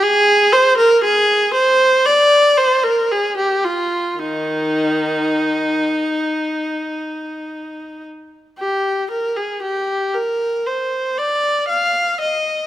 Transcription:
\new Staff \with { instrumentName = "Viola" } { \time 4/4 \key ees \major \tempo 4 = 57 << { aes'8 c''16 bes'16 aes'8 c''8 d''8 c''16 bes'16 aes'16 g'16 f'8 | ees'2.~ ees'8 r8 | \key g \phrygian g'8 bes'16 aes'16 g'8 bes'8 c''8 d''8 f''8 ees''8 | } \\ { r1 | ees4. r2 r8 | r1 | } >> }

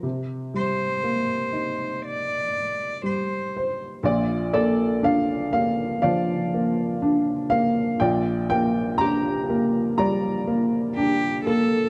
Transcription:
<<
  \new Staff \with { instrumentName = "Cello" } { \time 4/4 \key c \dorian \tempo 4 = 60 r8 c''4. d''4 c''8. r16 | \key bes \major r1 | r2. g'8 a'8 | }
  \new Staff \with { instrumentName = "Harp" } { \time 4/4 \key c \dorian r1 | \key bes \major r8 a'2 r4. | r4 g'2 r8 a'8 | }
  \new Staff \with { instrumentName = "Upright piano" } { \time 4/4 \key c \dorian << { r2. r8 c''8 | \key bes \major d''8 d''8 f''8 f''8 f''4. f''8 | g''8 g''8 bes''4 bes''4. r8 | } \\ { r1 | f'2 d''2 | d''2 d''2 | } >> }
  \new Staff \with { instrumentName = "Upright piano" } { \time 4/4 \key c \dorian c8 g8 bes8 ees'4. g4 | \key bes \major <bes,, bes,>8 bes8 d'8 bes8 f8 bes8 d'8 bes8 | <bes,, bes,>8 bes8 d'8 bes8 g8 bes8 d'8 bes8 | }
>>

